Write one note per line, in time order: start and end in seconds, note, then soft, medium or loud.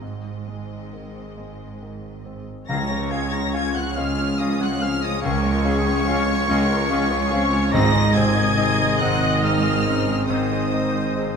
0.00 2.45 G#1 medium
0.00 1.15 G#2 soft
0.00 2.45 G#2 medium
0.00 2.65 G#2 soft
0.00 1.19 C3 soft
0.00 2.48 G#3 soft
0.00 0.29 C4 soft
0.00 2.48 C4 soft
0.00 2.44 D#5 soft
0.48 1.19 G#3 soft
0.92 1.63 D#3 soft
1.38 2.08 G#3 soft
1.82 2.52 D#3 soft
2.26 2.69 C4 soft
2.67 3.82 C#2 medium
2.67 5.19 C#2 medium
2.67 3.93 C#3 loud
2.67 5.23 C#3 medium
2.67 7.70 F3 medium
2.67 2.88 C#4 medium
2.67 2.85 C#4 medium
2.67 7.70 C#4 medium
2.67 2.88 G#4 medium
2.67 3.92 C#5 medium
2.67 2.78 F5 medium
2.67 3.13 A#5 medium
2.67 3.07 A#6 loud
2.90 3.24 C#4 soft
2.90 3.11 F4 medium
2.90 3.11 C#5 medium
3.11 3.32 C#4 medium
3.11 3.28 C#4 medium
3.11 5.64 C#4 medium
3.11 3.32 G#4 medium
3.11 3.46 G#4 medium
3.11 3.21 F5 medium
3.11 3.34 G#5 medium
3.11 3.33 G#6 medium
3.32 3.67 C#4 medium
3.32 3.54 F4 medium
3.32 3.54 C#5 medium
3.32 3.53 A#5 medium
3.32 3.54 A#6 loud
3.53 3.71 C#4 medium
3.53 3.74 C#4 medium
3.53 3.88 F4 medium
3.53 6.07 F4 medium
3.53 3.74 G#4 medium
3.53 3.63 F5 medium
3.53 3.74 G#5 medium
3.53 3.75 G#6 loud
3.74 4.10 C#4 medium
3.74 3.97 F4 medium
3.74 3.97 C#5 medium
3.74 3.97 F#5 medium
3.74 3.98 F#6 medium
3.96 5.08 C#2 medium
3.96 4.31 G#3 medium
3.96 4.18 C#4 medium
3.96 4.13 C#4 medium
3.96 5.22 G#4 medium
3.96 4.18 G#4 medium
3.96 4.81 G#4 medium
3.96 4.41 F5 medium
3.96 4.06 F5 medium
3.96 4.39 F6 loud
4.17 4.52 C#4 medium
4.17 4.39 F4 medium
4.17 4.39 C#5 medium
4.38 4.58 C#4 medium
4.38 4.55 C#4 medium
4.38 4.73 F4 medium
4.38 4.59 G#4 medium
4.38 6.90 C#5 medium
4.38 4.61 D#5 medium
4.38 4.49 F5 medium
4.38 4.60 D#6 loud
4.60 4.94 C#4 medium
4.60 4.81 F4 medium
4.60 4.81 C#5 medium
4.60 4.83 F#5 medium
4.60 4.83 F#6 loud
4.80 5.02 C4 medium
4.80 5.02 C#4 medium
4.80 4.97 C#4 medium
4.80 5.02 G#4 medium
4.80 6.49 G#4 medium
4.80 4.90 F5 medium
4.80 5.03 F5 medium
4.80 5.03 F6 loud
5.02 5.36 C#4 medium
5.02 5.23 F4 medium
5.02 5.23 C#5 medium
5.02 5.21 D#5 medium
5.02 5.24 D#6 loud
5.22 6.34 C#2 loud
5.22 7.70 C#2 medium
5.22 7.77 C#3 medium
5.22 5.42 C#4 medium
5.22 5.39 C#4 medium
5.22 5.42 G#4 medium
5.22 5.65 A#4 medium
5.22 7.74 C#5 loud
5.22 5.31 F5 medium
5.22 7.69 C#6 loud
5.43 5.78 G#3 medium
5.43 5.65 F4 medium
5.43 5.64 C#5 medium
5.64 5.85 C#4 medium
5.64 5.81 C#4 medium
5.64 7.77 C#4 medium
5.64 5.85 G#4 medium
5.64 6.06 G#4 loud
5.64 5.99 G#4 medium
5.64 5.74 F5 medium
5.86 6.20 C#4 medium
5.86 6.07 F4 medium
5.86 6.07 C#5 medium
6.06 6.26 C#4 medium
6.06 6.23 C#4 medium
6.06 7.77 F4 medium
6.06 6.41 F4 medium
6.06 6.26 G#4 medium
6.06 6.48 C#5 loud
6.06 6.17 F5 medium
6.26 6.62 C#4 medium
6.26 6.48 F4 medium
6.26 6.48 C#5 medium
6.46 7.59 C#2 loud
6.46 6.68 C#4 medium
6.46 6.65 C#4 medium
6.46 6.68 G#4 medium
6.46 7.31 G#4 medium
6.46 6.89 A#4 loud
6.46 6.59 F5 medium
6.51 6.83 G#3 medium
6.68 7.03 C#4 medium
6.68 6.90 F4 medium
6.68 6.89 C#5 medium
6.88 7.08 C#4 medium
6.88 7.07 C#4 medium
6.88 7.24 F4 medium
6.88 7.09 G#4 medium
6.88 7.31 G#4 medium
6.88 7.77 C#5 medium
6.88 7.00 F5 medium
7.10 7.45 C#4 medium
7.10 7.31 F4 medium
7.10 7.31 C#5 medium
7.30 7.52 C#4 medium
7.30 7.49 C#4 medium
7.30 7.52 G#4 medium
7.30 8.99 G#4 medium
7.30 7.73 C#5 loud
7.30 7.42 F5 medium
7.34 7.54 C4 medium
7.51 7.74 C#4 medium
7.51 7.73 F4 medium
7.51 7.73 C#5 medium
7.72 8.85 G#1 loud
7.72 8.96 G#2 loud
7.72 10.28 G#2 loud
7.72 8.85 G#2 loud
7.72 10.26 G#2 medium
7.72 11.37 D#3 loud
7.72 7.90 C4 loud
7.72 11.37 C4 loud
7.72 7.92 D#4 medium
7.72 7.92 C5 medium
7.72 10.29 D#5 loud
7.72 7.83 D#5 medium
7.72 8.16 A#5 loud
7.72 8.14 A#6 loud
7.93 8.29 D#4 medium
7.93 8.14 G#4 medium
7.93 8.15 D#5 medium
8.14 11.37 C3 medium
8.14 8.31 C4 medium
8.14 8.35 D#4 medium
8.14 8.36 C5 medium
8.14 8.50 C5 medium
8.14 8.24 D#5 medium
8.14 8.99 G#5 loud
8.14 9.00 G#6 loud
8.36 8.71 D#4 medium
8.36 8.57 G#4 medium
8.36 8.57 D#5 medium
8.56 8.73 C4 medium
8.56 8.77 D#4 medium
8.56 11.16 D#4 medium
8.56 8.93 G#4 medium
8.56 8.77 C5 medium
8.56 8.66 D#5 medium
8.78 9.14 D#4 medium
8.78 9.00 G#4 medium
8.78 9.00 D#5 medium
8.99 10.14 G#1 loud
8.99 10.14 G#2 medium
8.99 9.16 C4 medium
8.99 9.35 C4 medium
8.99 9.21 D#4 medium
8.99 9.84 G#4 medium
8.99 9.22 C5 medium
8.99 9.09 D#5 medium
8.99 9.45 F#5 loud
8.99 9.42 F#6 loud
9.21 9.56 D#4 medium
9.21 9.42 G#4 medium
9.21 9.42 D#5 medium
9.41 9.58 C4 medium
9.41 9.62 D#4 medium
9.41 9.77 G#4 medium
9.41 9.62 C5 medium
9.41 9.51 D#5 medium
9.41 11.37 D#5 medium
9.41 10.01 F5 medium
9.41 10.28 F6 loud
9.63 9.99 D#4 medium
9.63 9.85 G#4 medium
9.63 9.85 D#5 medium
9.84 10.01 C4 medium
9.84 10.08 C#4 medium
9.84 10.06 D#4 medium
9.84 11.37 G#4 medium
9.84 10.06 C5 medium
9.84 9.94 D#5 medium
10.06 10.43 D#4 medium
10.06 10.29 G#4 medium
10.06 10.29 D#5 medium
10.28 11.37 G#1 medium
10.28 11.37 G#2 medium
10.28 10.45 C4 medium
10.28 10.49 D#4 medium
10.28 10.49 C5 medium
10.28 11.37 C5 medium
10.28 10.38 D#5 medium
10.28 11.37 D#5 medium
10.28 11.37 D#6 medium
10.52 10.87 C4 soft
10.52 10.73 G#4 medium
10.52 10.73 D#5 medium
10.73 11.37 G#3 medium
10.73 10.89 C4 medium
10.73 10.95 D#4 medium
10.73 10.95 C5 medium
10.73 11.09 C5 medium
10.73 10.83 D#5 medium
10.95 11.30 D#4 medium
10.95 11.17 G#4 medium
10.95 11.17 D#5 medium
11.15 11.32 C4 medium
11.15 11.37 D#4 medium
11.15 11.37 G#4 medium
11.15 11.37 C5 medium
11.15 11.25 D#5 medium